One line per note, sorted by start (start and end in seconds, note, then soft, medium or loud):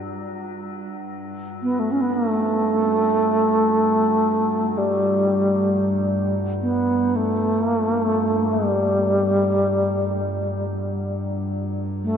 0.00 1.35 G2 medium
1.36 12.17 G2 medium
1.63 1.81 B3 medium
1.79 1.93 A3 medium
1.91 2.03 C#4 medium
2.01 2.15 B3 medium
2.14 4.79 A3 medium
4.78 6.35 G3 medium
6.62 7.17 B3 medium
7.16 7.64 A3 medium
7.64 7.77 A#3 medium
7.77 7.91 A3 medium
7.91 8.04 A#3 medium
8.04 8.54 A3 medium
8.52 10.63 G3 medium
12.04 12.17 A3 medium